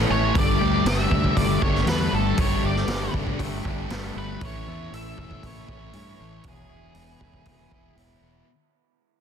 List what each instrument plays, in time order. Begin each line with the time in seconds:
Already playing: distorted electric guitar A2 E3, overdriven electric guitar E3 A3 C#4 A4, clean electric guitar C#4 A4
0.09 fingered electric bass A1, distorted electric guitar E3 A3, clean electric guitar A3, lead electric guitar C#5
0.33 fingered electric bass G1, distorted electric guitar G2 D3 G3, overdriven electric guitar G3 A3 D4 G4, kick, open hi-hat
0.38 lead electric guitar D5
0.59 fingered electric bass D2, overdriven electric guitar A3 D4 G4
0.83 fingered electric bass G1, distorted electric guitar G2 D3, overdriven electric guitar G3 A3 D4 G4, lead electric guitar E5, snare, open hi-hat
0.88 distorted electric guitar G3
1.09 fingered electric bass D2, overdriven electric guitar A3 D4 G4, kick
1.24 kick
1.35 fingered electric bass G1, distorted electric guitar G2 D3 G3, clean electric guitar A3, lead electric guitar D5, kick, open hi-hat
1.60 fingered electric bass G1, distorted electric guitar D3 G3, overdriven electric guitar A3 D4 G4, lead electric guitar C#5, kick
1.75 snare
1.85 fingered electric bass E2, distorted electric guitar G2 D3 G3, overdriven electric guitar G3 A3 D4 G4, lead electric guitar B4, snare, open hi-hat
2.11 fingered electric bass G1, distorted electric guitar D3 G3, clean electric guitar A3
2.15 lead electric guitar A4
2.37 fingered electric bass G1, distorted electric guitar G2 D3 G3, overdriven electric guitar G3 A3 D4 G4, lead electric guitar C#5, kick, open hi-hat
2.62 fingered electric bass G1, overdriven electric guitar A3 D4 G4
2.66 lead electric guitar D5
2.76 snare
2.87 fingered electric bass G1, distorted electric guitar G2 D3 G3, overdriven electric guitar G3 A3 D4 G4, snare, open hi-hat
3.12 fingered electric bass G1, overdriven electric guitar A3 D4 G4, kick
3.27 kick
3.38 fingered electric bass G1, distorted electric guitar G2 D3 G3, clean electric guitar A3, kick, open hi-hat
3.63 fingered electric bass G1, distorted electric guitar D3 G3, overdriven electric guitar A3 D4 G4, kick
3.89 fingered electric bass G1, distorted electric guitar G2 D3 G3, overdriven electric guitar G3 A3 D4 G4, snare, open hi-hat
4.15 fingered electric bass G1, distorted electric guitar D3 G3, clean electric guitar A3, lead electric guitar B4
4.40 fingered electric bass A1, distorted electric guitar A2 E3 A3, overdriven electric guitar A2 E3 A3 C#4 E4, kick, open hi-hat
4.45 lead electric guitar C#5
4.66 fingered electric bass E2, overdriven electric guitar A3 C#4 E4, clean electric guitar A4
4.91 fingered electric bass A1, distorted electric guitar A2 E3 A3, overdriven electric guitar A2 E3 A3 C#4 E4, lead electric guitar E5, open hi-hat
5.17 overdriven electric guitar A3 C#4 E4, kick
5.31 kick
5.43 fingered electric bass A1, distorted electric guitar A2 E3 A3, clean electric guitar A3, lead electric guitar C#5, kick, open hi-hat
5.67 fingered electric bass A1, distorted electric guitar E3 A3, overdriven electric guitar A3 C#4 E4, kick
5.93 fingered electric bass G2, distorted electric guitar A2 E3 A3, overdriven electric guitar E3 A3 C#4 E4, open hi-hat
6.19 fingered electric bass A1, distorted electric guitar E3 A3, clean electric guitar A3
6.43 fingered electric bass E1, overdriven electric guitar E2 B2 E3 G#3 B3 E4, distorted electric guitar E2 B2 E3, clean electric guitar F#3, kick, open hi-hat
6.48 lead electric guitar G#4
6.68 fingered electric bass E1, overdriven electric guitar E3 G#3 B3 E4, clean electric guitar G#4
6.94 fingered electric bass E1, overdriven electric guitar E2 B2 E3 G#3 B3 E4, distorted electric guitar E2 B2 E3, open hi-hat
7.19 fingered electric bass E1, overdriven electric guitar E3 G#3 B3 E4, kick
7.34 kick
7.45 fingered electric bass E1, distorted electric guitar E2 B2 E3, clean electric guitar B3, kick, open hi-hat
7.69 fingered electric bass E1, distorted electric guitar B2 E3, overdriven electric guitar E3 G#3 B3 E4, kick
7.95 fingered electric bass E1, distorted electric guitar E2 B2 E3, overdriven electric guitar E3 G#3 B3 E4, clean electric guitar F#3, open hi-hat
8.21 fingered electric bass E1, distorted electric guitar B2 E3, clean electric guitar B3